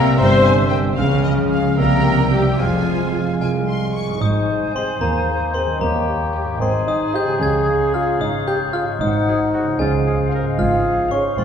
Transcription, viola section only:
0.00 0.16 A#4 loud
0.19 0.71 C5 loud
1.79 2.29 A#4 loud
2.33 2.59 G4 medium
2.61 3.41 F4 medium
4.75 4.95 G#4 medium
5.55 5.75 G#4 medium
6.34 6.54 G4 medium
7.15 7.35 G#4 medium
7.93 8.13 G#4 medium
8.75 8.94 G#4 medium
9.53 9.73 G#4 medium
10.33 10.53 G#4 medium
11.14 11.32 G#4 medium

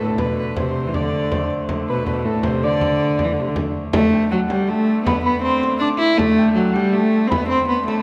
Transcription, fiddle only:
0.00 0.18 A4 medium
0.20 0.37 B4 medium
0.39 0.56 B4 medium
0.57 0.96 C5 medium
0.95 1.51 D5 medium
1.89 2.06 B4 medium
2.07 2.15 B4 medium
2.26 2.43 A4 medium
2.43 2.52 C5 medium
2.64 3.20 D5 medium

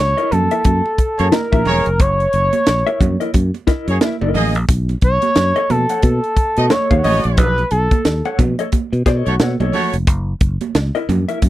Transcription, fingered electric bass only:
0.00 0.13 C#2 medium
0.32 0.47 F#2 loud
0.65 0.80 F#2 loud
0.99 muted fingered electric bass stroke medium
1.20 1.29 F#2 loud
1.52 1.63 A#1 medium
1.66 1.81 E1 loud
1.87 2.00 F1 loud
2.00 2.25 F#1 loud
2.34 2.49 F#1 loud
2.67 2.82 A#1 medium
3.00 3.16 F#2 loud
3.34 3.50 F#2 loud
3.68 muted fingered electric bass stroke soft
3.88 3.98 F#2 medium
4.22 4.32 F#1 loud
4.35 4.55 A1 loud
4.55 4.65 A#1 medium
4.69 4.94 B1 medium
5.02 5.17 B1 loud
5.36 5.51 F#2 medium
5.70 5.85 B2 medium
6.03 6.18 B2 loud
6.37 muted fingered electric bass stroke medium
6.58 6.68 B2 loud
6.91 7.01 D#2 loud
7.05 7.20 A1 loud
7.25 7.38 A#1 loud
7.38 7.63 B1 loud
7.72 7.87 B1 loud
8.05 8.20 D#2 medium
8.39 8.54 B2 medium
8.93 9.03 B2 medium
9.06 9.21 B2 medium
9.27 9.37 B1 medium
9.40 9.55 B2 medium
9.60 9.70 B1 medium
9.94 10.07 F1 medium
10.07 10.33 F#1 loud
10.41 10.56 F#1 loud
10.75 10.90 C#2 medium
11.09 11.24 F#2 loud
11.43 11.49 F#2 loud

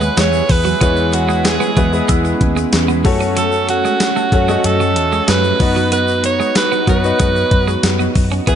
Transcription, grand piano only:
0.00 0.82 E3 medium
0.00 0.81 G#3 medium
0.00 0.81 B3 medium
0.00 0.82 E4 medium
0.00 0.82 G#4 medium
0.00 1.78 B4 medium
0.00 0.42 C#5 medium
0.81 1.73 E3 medium
0.81 1.59 G#3 medium
0.81 1.59 B3 medium
0.81 1.59 E4 medium
0.81 1.59 G#4 medium
0.81 1.59 C#5 medium
1.77 1.90 G#3 medium
1.77 1.90 B3 medium
1.77 1.90 E4 medium
1.77 1.90 G#4 medium
1.77 1.90 B4 medium
1.93 2.96 G#3 medium
1.93 2.97 B3 medium
1.93 2.97 E4 medium
1.93 2.97 G#4 medium
1.93 2.97 B4 medium
3.05 4.08 A3 medium
3.05 4.09 C#4 medium
3.05 4.09 F#4 medium
3.05 4.09 A4 medium
3.05 4.09 C#5 loud
4.32 4.45 A3 medium
4.32 4.45 C#4 medium
4.32 4.46 F#4 medium
4.32 4.46 A4 medium
4.32 4.46 C#5 medium
4.48 5.52 A3 medium
4.48 5.52 C#4 medium
4.48 5.52 F#4 medium
4.48 5.53 A4 medium
4.48 5.53 D#5 medium
5.60 6.64 B3 medium
5.60 6.64 D#4 medium
5.60 6.64 F#4 medium
5.60 6.64 B4 medium
5.60 6.64 D#5 medium
6.88 7.01 B3 medium
6.88 7.01 D#4 medium
6.88 7.01 F#4 medium
6.88 7.01 B4 medium
6.88 7.01 C#5 medium
7.04 8.07 B3 medium
7.04 8.08 D#4 medium
7.04 8.08 F#4 medium
7.04 8.08 B4 medium
7.04 8.08 D#5 medium
8.47 8.55 E3 medium
8.47 8.55 B3 medium
8.47 8.55 E4 medium
8.47 8.55 G#4 medium
8.47 8.55 B4 medium
8.47 8.55 E5 medium

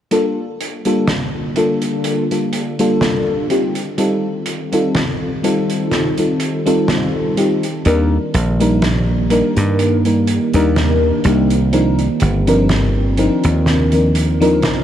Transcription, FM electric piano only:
0.11 0.40 G3 medium
0.11 0.40 A#3 medium
0.11 0.40 D4 medium
0.11 0.40 F4 medium
0.11 0.40 A4 medium
0.85 1.11 G3 medium
0.85 1.11 A#3 medium
0.85 1.11 D4 medium
0.85 1.11 F4 medium
0.85 1.11 A4 loud
1.56 2.25 G3 medium
1.56 2.25 A#3 medium
1.56 2.25 D4 medium
1.56 2.25 F4 medium
1.56 2.25 A4 medium
2.31 2.73 G3 medium
2.31 2.73 A#3 medium
2.31 2.74 D4 medium
2.31 2.74 F4 medium
2.31 2.74 A4 medium
2.79 3.45 G3 medium
2.79 3.45 A#3 medium
2.79 3.45 D4 medium
2.79 3.45 F4 medium
2.79 3.46 A4 loud
3.50 3.78 G3 medium
3.50 3.79 C4 medium
3.50 3.79 D#4 medium
3.50 3.79 F4 medium
3.50 3.79 G4 medium
3.98 4.27 G3 medium
3.98 4.27 C4 medium
3.98 4.27 D#4 medium
3.98 4.27 F4 medium
3.98 4.27 A4 medium
4.72 4.98 G3 medium
4.72 4.98 C4 medium
4.72 4.98 D#4 medium
4.72 4.98 F4 medium
4.72 4.98 A4 medium
5.43 6.12 G3 medium
5.43 6.12 C4 medium
5.43 6.12 D#4 medium
5.43 6.12 F4 medium
5.43 6.12 A4 medium
6.18 6.60 G3 medium
6.18 6.60 C4 medium
6.18 6.60 D#4 medium
6.18 6.61 F4 medium
6.18 6.61 A4 medium
6.66 7.32 G3 medium
6.66 7.32 C4 medium
6.66 7.32 D#4 medium
6.66 7.32 F4 medium
6.66 7.32 A4 loud
7.37 7.65 G3 medium
7.37 7.66 C4 medium
7.37 7.66 D#4 medium
7.37 7.66 F4 medium
7.37 7.66 G4 medium
7.85 8.14 G3 medium
7.85 8.14 A#3 medium
7.85 8.14 D4 medium
7.85 8.14 D#4 medium
7.85 8.15 A#4 medium
8.60 8.85 G3 medium
8.60 8.85 A#3 medium
8.60 8.85 D4 medium
8.60 8.86 D#4 medium
8.60 8.86 A#4 loud
9.30 9.99 G3 medium
9.30 9.99 A#3 medium
9.30 9.99 D4 medium
9.30 9.99 D#4 medium
9.30 10.00 A#4 medium
10.05 10.48 G3 medium
10.05 10.48 A#3 medium
10.05 10.48 D4 medium
10.05 10.48 D#4 medium
10.05 10.48 A#4 medium
10.54 11.19 G3 medium
10.54 11.19 A#3 medium
10.54 11.20 D4 medium
10.54 11.20 D#4 medium
10.54 11.20 A#4 loud
11.24 11.53 G3 medium
11.24 11.53 A#3 medium
11.24 11.53 D4 medium
11.24 11.53 D#4 medium
11.24 11.53 G4 medium
11.73 12.01 F3 medium
11.73 12.01 C4 medium
11.73 12.02 D4 medium
11.73 12.02 D#4 medium
11.73 12.02 A#4 loud
12.47 12.72 F3 medium
12.47 12.72 C4 medium
12.47 12.72 D4 medium
12.47 12.73 D#4 medium
12.47 12.73 A#4 loud
13.18 13.86 F3 medium
13.18 13.86 C4 medium
13.18 13.87 D4 medium
13.18 13.87 D#4 medium
13.18 13.87 A#4 medium
13.92 14.35 F3 medium
13.92 14.35 C4 medium
13.92 14.35 D4 medium
13.92 14.35 D#4 medium
13.92 14.35 A#4 medium
14.40 14.84 F3 loud
14.40 14.84 C4 medium
14.40 14.84 D4 medium
14.40 14.84 D#4 medium
14.40 14.84 A#4 loud

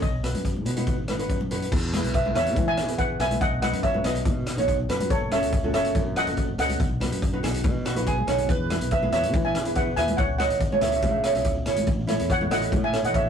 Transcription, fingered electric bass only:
0.02 0.31 B1 medium
0.34 0.66 F#2 medium
0.66 0.95 B2 medium
0.98 1.26 G#1 medium
1.29 1.67 F#2 loud
1.72 2.01 E2 loud
2.04 2.32 B1 medium
2.35 2.56 E2 medium
2.56 2.88 E3 loud
2.88 3.17 E2 medium
3.20 3.39 B1 loud
3.41 3.70 B1 loud
3.73 4.01 F#2 medium
4.04 4.27 B1 medium
4.25 4.59 B2 loud
4.58 4.86 B1 loud
4.89 5.08 F#2 loud
5.10 5.39 F#1 loud
5.42 5.70 C#2 medium
5.74 5.96 F#1 loud
5.95 6.28 F#2 loud
6.27 6.55 F#1 medium
6.58 6.77 C#2 loud
6.80 7.08 B1 loud
7.12 7.40 F#2 medium
7.43 7.66 B1 medium
7.64 7.97 B2 loud
7.95 8.24 B1 medium
8.27 8.46 B1 loud
8.49 8.77 E2 loud
8.81 9.09 B1 medium
9.12 9.33 E2 medium
9.33 9.66 E3 loud
9.66 9.94 E2 loud
9.97 10.16 D#2 loud
10.18 10.47 C#2 loud
10.50 10.78 G#1 medium
10.82 11.04 C#2 medium
11.02 11.37 C#3 loud
11.35 11.63 C#2 loud
11.67 11.85 G#1 loud
11.87 12.16 A1 loud
12.20 12.48 E2 medium
12.51 12.73 A1 loud
12.72 13.05 A2 loud
13.04 13.29 A1 loud

